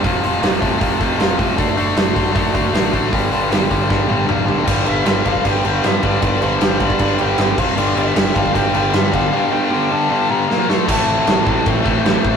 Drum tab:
CC |----------------|----------------|----------------|x-x-x-x-x-x-x-x-|
HH |o-o-o-o-o-o-o-o-|o-o-o-o-o-o-o-o-|o-o-o-o---------|----------------|
SD |----o-------o---|----o-------o---|----o---o-------|----o-------o---|
T1 |----------------|----------------|----------o-----|----------------|
T2 |----------------|----------------|------------o---|----------------|
FT |----------------|----------------|--------------o-|----------------|
BD |o-----o-o-o---o-|o-----o-o-o---o-|o-----o-o-------|o-----ooo-----o-|

CC |x-x-x-x-x-x-x-x-|x-x-x-x-x-x-x-x-|----------------|x---x---x---x---|
HH |----------------|----------------|----------------|----------------|
SD |----o-------o---|----o-------o---|------------o-o-|----o-------o---|
T1 |----------------|----------------|----------------|----------------|
T2 |----------------|----------------|----------------|----------------|
FT |----------------|----------------|----------------|----------------|
BD |o-----ooo-----o-|------ooo-----o-|----------------|o-----o-o-o---o-|